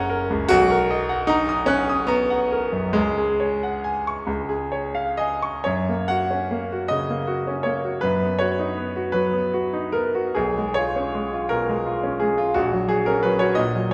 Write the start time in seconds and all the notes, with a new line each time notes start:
Already playing: F#1 C#4 D#4 A#4 C#5 F#5 A#5 C#6 F#6
0.10 A#4
0.30 C#2
0.48 B1 F#4
0.70 A#4
0.90 D#5
1.09 F#5
1.27 D#4 A#5
1.49 D#6
1.66 C#4 F#6
1.90 D#6
2.07 B3 A#5
2.30 F#5
2.52 A#4
2.72 F#2
2.93 C#2 G#3
3.18 G#4
3.40 C#5
3.63 F#5
3.84 G#5
4.07 C#6
4.27 C#2
4.49 G#4
4.72 C#5
4.95 F5
5.17 D#5 G#5
5.42 C#6
5.64 F#2 C#5
5.89 A#3
6.08 F#4 F#5
6.31 C#4
6.51 A#3
6.72 F#4
6.88 C#3 D#5
7.09 A#3
7.27 F#4
7.47 C#4
7.63 A#3 C#5
7.84 F#4
8.01 F#2 B4
8.23 B3
8.39 F#4 C#5
8.59 D#4
8.78 B3
8.96 F#4
9.12 F#3 B4
9.33 B3
9.54 F#4
9.73 D#4
9.92 B3 A#4
10.15 F#4
10.35 B1 G#4
10.58 G#3
10.74 F4 C#5
10.96 C#4
11.15 G#3
11.33 F4
11.49 B2 A#4
11.69 G#3
11.86 F4
12.03 C#4
12.20 G#3 G#4
12.38 F4
12.54 A#1 F#4
12.73 F#3
12.89 F#4 G#4
13.06 C#4 A#4
13.23 F#3 B4
13.39 F#4 C#5
13.55 A#2 D#5
13.75 F#3